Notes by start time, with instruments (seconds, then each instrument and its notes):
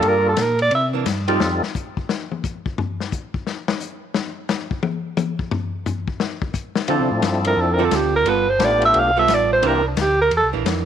Already playing: tonewheel organ G3 A#3 D4 F4 A4
0.03 tonewheel organ G2, ride
0.07 alto saxophone A#4
0.29 alto saxophone A4
0.37 tonewheel organ A#2, snare, hi-hat pedal, ride
0.42 alto saxophone A#4
0.59 alto saxophone D5, ride
0.71 tonewheel organ C3, alto saxophone E5, ride
0.93 hollow-body jazz guitar E3 A#3 D4
1.06 tonewheel organ G2, snare, hi-hat pedal, ride
1.28 hollow-body jazz guitar F3 A3 D#4 G4, tonewheel organ G3 C4 D#4 F4 A4, ride
1.40 tonewheel organ F2, snare
1.63 snare
1.75 kick, hi-hat pedal
1.97 kick
2.09 snare
2.32 high tom
2.44 kick, hi-hat pedal
2.66 kick
2.78 floor tom
3.00 snare
3.12 kick, hi-hat pedal
3.34 kick
3.47 snare
3.68 snare
3.80 hi-hat pedal
4.14 snare
4.49 snare, hi-hat pedal
4.71 kick
4.83 high tom
5.17 hi-hat pedal, high tom
5.39 kick
5.51 floor tom
5.86 floor tom, hi-hat pedal
6.08 kick
6.20 snare
6.42 kick
6.54 kick, hi-hat pedal
6.75 snare
6.88 hollow-body jazz guitar D3 C4 F4 A4, tonewheel organ D3 F3 C4 D4 E4 A4, ride
7.00 tonewheel organ C3
7.11 tonewheel organ A2
7.22 tonewheel organ G2, snare, hi-hat pedal, ride
7.45 alto saxophone A#4, ride
7.56 tonewheel organ F2, alto saxophone A4
7.73 alto saxophone A#4
7.79 hollow-body jazz guitar D3 C4 F4 A4
7.84 alto saxophone A4
7.91 tonewheel organ D2, snare, hi-hat pedal, ride
7.96 alto saxophone G4
8.16 alto saxophone A#4
8.25 tonewheel organ G1, hollow-body jazz guitar G3 B3 F4 A4, ride
8.29 alto saxophone B4
8.49 alto saxophone C5
8.59 tonewheel organ A1 A3 B3 D4 F4 G4, snare, hi-hat pedal, ride
8.64 alto saxophone D5
8.82 alto saxophone E5, ride
8.94 tonewheel organ B1, ride
8.99 alto saxophone F5
9.16 hollow-body jazz guitar G3 B3 F4 A4, alto saxophone E5
9.28 tonewheel organ A1, snare, hi-hat pedal, ride
9.34 alto saxophone D5
9.53 alto saxophone C5
9.62 tonewheel organ C2 A#3 C4 D4 E4 G4, hollow-body jazz guitar E3 A#3 D4, ride
9.67 alto saxophone A#4
9.87 alto saxophone D4
9.97 tonewheel organ D2, snare, hi-hat pedal, ride
10.01 alto saxophone G4
10.21 alto saxophone A#4
10.31 tonewheel organ E2, ride
10.37 alto saxophone A4
10.43 tonewheel organ C2
10.53 tonewheel organ A#1, hollow-body jazz guitar E3 A#3 D4
10.65 tonewheel organ F2, snare, hi-hat pedal, ride